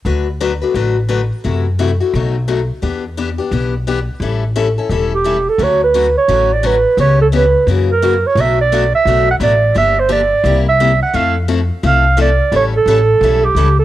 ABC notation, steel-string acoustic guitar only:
X:1
M:4/4
L:1/16
Q:"Swing" 1/4=173
K:D
V:1 name="Steel-string acoustic guitar"
[D,F,A,DFB]2 z2 [D,F,A,DFB] z [A,DFB]2 [D,F,A,DFB]2 z2 [D,F,A,DFB] z3 | [=C,E,A,EF]2 z2 [C,E,A,EF] z [A,EF]2 [B,,F,A,^DF]2 z2 [B,,F,A,DF] z3 | [E,B,DG]2 z2 [E,B,DG] z [B,DG]2 [E,B,DG]2 z2 [E,B,DG] z3 | [E,G,CEA]2 z2 [E,G,CEA] z [CEA]2 [E,G,CEA]2 z2 [E,G,CEA] z3 |
[D,F,A,CF]2 z2 [D,F,A,CF] z3 [D,F,A,CF]2 z2 [D,F,A,CF] z3 | [C,E,B,CG]2 z2 [C,E,B,CG] z3 [C,E,^A,CF]2 z2 [C,E,A,CF] z3 | [B,,F,A,DF]2 z2 [B,,F,A,DF] z3 [B,,F,A,DF]2 z2 [B,,F,A,DF] z3 | [D,=F,_B,DG]2 z2 [D,F,B,DG] z3 [=C,G,B,EG]2 z2 [C,G,B,EG] z3 |
[=F,A,=CEA]2 z2 [F,A,CEA] z3 [F,A,CEA]2 z2 [F,A,CEA] z3 | [E,G,CEA]2 z2 [E,G,CEA] z3 [E,G,CEA]2 z2 [E,G,CEA] z3 |]